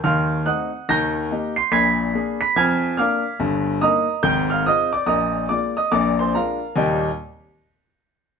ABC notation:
X:1
M:4/4
L:1/8
Q:"Swing" 1/4=143
K:Eb
V:1 name="Grand piano"
[fc'f']2 [_ge'_g']2 [b=g'b']3 [c'c''] | [_c'a'_c'']3 [c'c''] [af'a']2 [fd'f']2 | z2 [ebe']2 [gg'] [ff'] [ee'] [dd'] | [ebe']2 [dd'] [ee'] [dd'] [cc'] [Bfb]2 |
[E,,B,,G,B,EGg] z6 z |]
V:2 name="Grand piano"
[E,,E,]2 [=A,CE]2 [E,,E,]2 [B,EG]2 | [B,,,B,,]2 [B,DA]2 [F,,F,]2 [B,DB]2 | [G,,,G,,]2 [B,EB]2 [A,,,A,,]2 [A,CF]2 | [B,,,B,,]2 [A,B,F]2 [B,,,B,,]2 [A,DF]2 |
z8 |]